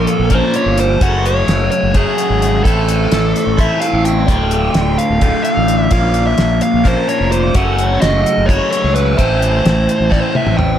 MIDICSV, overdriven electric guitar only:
0, 0, Header, 1, 2, 480
1, 0, Start_track
1, 0, Tempo, 466926
1, 1041, Time_signature, 7, 3, 24, 8
1, 11089, End_track
2, 0, Start_track
2, 0, Title_t, "Overdriven electric guitar"
2, 0, Program_c, 0, 29
2, 0, Note_on_c, 0, 46, 73
2, 0, Note_on_c, 0, 53, 76
2, 0, Note_on_c, 0, 58, 80
2, 0, Note_on_c, 0, 61, 79
2, 0, Note_on_c, 0, 65, 77
2, 0, Note_on_c, 0, 70, 79
2, 300, Note_off_c, 0, 46, 0
2, 307, Note_off_c, 0, 53, 0
2, 308, Note_off_c, 0, 58, 0
2, 311, Note_off_c, 0, 61, 0
2, 312, Note_off_c, 0, 70, 0
2, 313, Note_off_c, 0, 65, 0
2, 324, Note_on_c, 0, 70, 67
2, 328, Note_on_c, 0, 65, 66
2, 332, Note_on_c, 0, 61, 61
2, 343, Note_on_c, 0, 58, 58
2, 349, Note_on_c, 0, 53, 55
2, 352, Note_on_c, 0, 46, 54
2, 1028, Note_off_c, 0, 70, 0
2, 1030, Note_off_c, 0, 65, 0
2, 1032, Note_off_c, 0, 61, 0
2, 1033, Note_off_c, 0, 46, 0
2, 1037, Note_on_c, 0, 42, 66
2, 1038, Note_off_c, 0, 58, 0
2, 1040, Note_off_c, 0, 53, 0
2, 1044, Note_on_c, 0, 49, 78
2, 1051, Note_on_c, 0, 54, 77
2, 1052, Note_on_c, 0, 57, 77
2, 1060, Note_on_c, 0, 61, 87
2, 1068, Note_on_c, 0, 66, 86
2, 1975, Note_off_c, 0, 42, 0
2, 1987, Note_on_c, 0, 42, 66
2, 1988, Note_off_c, 0, 49, 0
2, 1992, Note_off_c, 0, 54, 0
2, 1996, Note_off_c, 0, 61, 0
2, 2000, Note_off_c, 0, 66, 0
2, 2000, Note_on_c, 0, 49, 64
2, 2004, Note_on_c, 0, 54, 58
2, 2007, Note_off_c, 0, 57, 0
2, 2011, Note_on_c, 0, 57, 61
2, 2016, Note_on_c, 0, 61, 64
2, 2024, Note_on_c, 0, 66, 63
2, 2699, Note_off_c, 0, 42, 0
2, 2706, Note_off_c, 0, 49, 0
2, 2708, Note_off_c, 0, 54, 0
2, 2709, Note_on_c, 0, 45, 71
2, 2714, Note_off_c, 0, 61, 0
2, 2715, Note_on_c, 0, 52, 75
2, 2718, Note_off_c, 0, 66, 0
2, 2724, Note_off_c, 0, 57, 0
2, 2724, Note_on_c, 0, 57, 71
2, 2729, Note_on_c, 0, 60, 70
2, 2736, Note_on_c, 0, 64, 77
2, 2744, Note_on_c, 0, 69, 74
2, 3660, Note_off_c, 0, 45, 0
2, 3662, Note_off_c, 0, 69, 0
2, 3663, Note_off_c, 0, 52, 0
2, 3668, Note_off_c, 0, 57, 0
2, 3670, Note_off_c, 0, 60, 0
2, 3671, Note_off_c, 0, 64, 0
2, 3674, Note_on_c, 0, 69, 62
2, 3682, Note_on_c, 0, 60, 68
2, 3683, Note_on_c, 0, 64, 65
2, 3696, Note_on_c, 0, 57, 61
2, 3700, Note_on_c, 0, 52, 52
2, 3707, Note_on_c, 0, 45, 44
2, 4374, Note_off_c, 0, 45, 0
2, 4378, Note_on_c, 0, 38, 76
2, 4383, Note_off_c, 0, 69, 0
2, 4386, Note_off_c, 0, 52, 0
2, 4387, Note_off_c, 0, 60, 0
2, 4388, Note_off_c, 0, 64, 0
2, 4389, Note_off_c, 0, 57, 0
2, 4390, Note_on_c, 0, 45, 68
2, 4393, Note_on_c, 0, 50, 73
2, 4402, Note_on_c, 0, 57, 76
2, 4410, Note_on_c, 0, 65, 76
2, 5335, Note_off_c, 0, 38, 0
2, 5341, Note_off_c, 0, 45, 0
2, 5343, Note_off_c, 0, 50, 0
2, 5347, Note_off_c, 0, 57, 0
2, 5348, Note_on_c, 0, 38, 60
2, 5352, Note_off_c, 0, 65, 0
2, 5362, Note_on_c, 0, 45, 61
2, 5364, Note_on_c, 0, 50, 62
2, 5376, Note_on_c, 0, 57, 74
2, 5378, Note_on_c, 0, 65, 64
2, 6061, Note_off_c, 0, 38, 0
2, 6068, Note_off_c, 0, 45, 0
2, 6069, Note_off_c, 0, 50, 0
2, 6075, Note_off_c, 0, 57, 0
2, 6076, Note_off_c, 0, 65, 0
2, 6077, Note_on_c, 0, 46, 76
2, 6086, Note_on_c, 0, 53, 77
2, 6094, Note_on_c, 0, 58, 79
2, 6096, Note_on_c, 0, 61, 81
2, 6096, Note_on_c, 0, 65, 70
2, 6107, Note_on_c, 0, 70, 73
2, 7021, Note_off_c, 0, 70, 0
2, 7026, Note_off_c, 0, 46, 0
2, 7026, Note_off_c, 0, 65, 0
2, 7030, Note_off_c, 0, 53, 0
2, 7030, Note_off_c, 0, 61, 0
2, 7033, Note_on_c, 0, 70, 68
2, 7035, Note_off_c, 0, 58, 0
2, 7039, Note_on_c, 0, 65, 64
2, 7042, Note_on_c, 0, 61, 63
2, 7049, Note_on_c, 0, 58, 61
2, 7052, Note_on_c, 0, 53, 57
2, 7061, Note_on_c, 0, 46, 53
2, 7744, Note_off_c, 0, 70, 0
2, 7747, Note_off_c, 0, 65, 0
2, 7749, Note_off_c, 0, 61, 0
2, 7750, Note_off_c, 0, 46, 0
2, 7752, Note_off_c, 0, 58, 0
2, 7754, Note_off_c, 0, 53, 0
2, 7754, Note_on_c, 0, 42, 74
2, 7762, Note_on_c, 0, 49, 70
2, 7767, Note_on_c, 0, 54, 67
2, 7773, Note_on_c, 0, 57, 79
2, 7776, Note_on_c, 0, 61, 82
2, 7785, Note_on_c, 0, 66, 76
2, 8704, Note_off_c, 0, 42, 0
2, 8709, Note_off_c, 0, 49, 0
2, 8711, Note_off_c, 0, 54, 0
2, 8714, Note_off_c, 0, 57, 0
2, 8715, Note_on_c, 0, 42, 65
2, 8716, Note_off_c, 0, 61, 0
2, 8720, Note_off_c, 0, 66, 0
2, 8728, Note_on_c, 0, 49, 65
2, 8734, Note_on_c, 0, 54, 67
2, 8740, Note_on_c, 0, 57, 67
2, 8741, Note_on_c, 0, 61, 64
2, 8743, Note_on_c, 0, 66, 73
2, 9418, Note_off_c, 0, 42, 0
2, 9422, Note_on_c, 0, 45, 70
2, 9425, Note_off_c, 0, 49, 0
2, 9427, Note_off_c, 0, 57, 0
2, 9430, Note_on_c, 0, 52, 74
2, 9434, Note_off_c, 0, 54, 0
2, 9438, Note_off_c, 0, 61, 0
2, 9439, Note_off_c, 0, 66, 0
2, 9439, Note_on_c, 0, 57, 71
2, 9442, Note_on_c, 0, 60, 78
2, 9449, Note_on_c, 0, 64, 79
2, 9457, Note_on_c, 0, 69, 83
2, 10366, Note_off_c, 0, 69, 0
2, 10371, Note_off_c, 0, 64, 0
2, 10376, Note_off_c, 0, 45, 0
2, 10379, Note_on_c, 0, 69, 61
2, 10380, Note_off_c, 0, 52, 0
2, 10381, Note_off_c, 0, 60, 0
2, 10383, Note_on_c, 0, 64, 59
2, 10385, Note_off_c, 0, 57, 0
2, 10393, Note_on_c, 0, 60, 62
2, 10395, Note_on_c, 0, 57, 55
2, 10402, Note_on_c, 0, 52, 53
2, 10410, Note_on_c, 0, 45, 63
2, 11089, Note_off_c, 0, 45, 0
2, 11089, Note_off_c, 0, 52, 0
2, 11089, Note_off_c, 0, 57, 0
2, 11089, Note_off_c, 0, 60, 0
2, 11089, Note_off_c, 0, 64, 0
2, 11089, Note_off_c, 0, 69, 0
2, 11089, End_track
0, 0, End_of_file